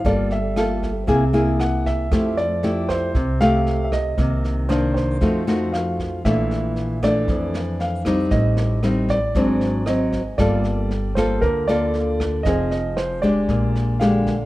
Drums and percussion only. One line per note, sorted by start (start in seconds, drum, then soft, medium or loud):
0.05 kick medium
0.05 snare soft
0.31 snare soft
0.56 cross-stick medium
0.56 snare soft
0.82 kick soft
0.82 snare soft
1.08 kick medium
1.08 snare soft
1.34 snare soft
1.60 cross-stick medium
1.60 snare soft
1.86 kick soft
1.86 snare soft
2.11 kick medium
2.11 cross-stick medium
2.11 snare soft
2.37 snare soft
2.63 snare soft
2.89 kick soft
2.89 cross-stick medium
2.89 snare soft
3.15 kick medium
3.15 snare soft
3.40 snare soft
3.67 snare soft
3.92 kick soft
3.92 cross-stick medium
3.92 snare soft
4.17 kick medium
4.17 snare soft
4.44 snare soft
4.70 cross-stick medium
4.70 snare soft
4.96 kick soft
4.96 snare soft
5.22 kick medium
5.22 snare soft
5.48 snare soft
5.74 cross-stick soft
5.74 snare soft
5.99 kick soft
5.99 snare soft
6.25 kick medium
6.25 cross-stick medium
6.25 snare soft
6.51 snare soft
6.76 snare soft
7.02 kick soft
7.02 cross-stick medium
7.02 snare soft
7.28 kick medium
7.28 snare soft
7.54 snare soft
7.80 snare soft
8.05 kick soft
8.05 cross-stick medium
8.05 snare soft
8.30 kick medium
8.30 snare soft
8.57 snare soft
8.83 cross-stick medium
8.83 snare soft
9.09 kick soft
9.09 snare soft
9.35 kick soft
9.35 snare soft
9.61 snare soft
9.86 cross-stick medium
9.86 snare soft
10.12 kick soft
10.12 snare soft
10.38 kick medium
10.38 cross-stick medium
10.38 snare soft
10.64 snare soft
10.91 snare soft
11.16 kick soft
11.16 cross-stick medium
11.16 snare soft
11.42 kick medium
11.42 snare soft
11.68 snare soft
11.94 snare soft
12.20 kick soft
12.20 cross-stick medium
12.20 snare soft
12.45 kick medium
12.45 snare soft
12.71 snare soft
12.97 cross-stick medium
12.97 snare soft
13.23 kick soft
13.23 snare soft
13.49 kick medium
13.49 snare soft
13.75 snare soft
14.01 cross-stick medium
14.01 snare soft
14.26 kick soft
14.26 snare soft